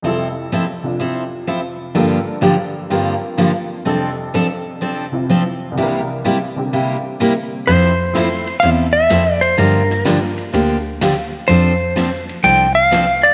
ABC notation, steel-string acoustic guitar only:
X:1
M:4/4
L:1/8
Q:"Swing" 1/4=126
K:F
V:1 name="Steel-string acoustic guitar"
[F,CEA] z [F,CEA] z [F,CEA] z [F,CEA] z | [G,,D,F,B,DG] z [G,,D,F,B,DG] z [G,,D,F,B,DG] z [G,,D,F,B,DG] z | [F,CDA] z [F,CDA] z [F,CDA] z [F,CDA] z | [C,G,B,EG] z [C,G,B,EG] z [C,G,B,EG] z [C,G,B,EG] z |
[F,CEA] z [F,CEA] z [F,CEA] z [F,CEA] z | [D,F,B,DG] z [D,F,B,DG] z [D,F,B,DG] z [D,F,B,DG] z | [F,CDA] z [F,CDA] z [F,CDA] z [F,CDA] z |]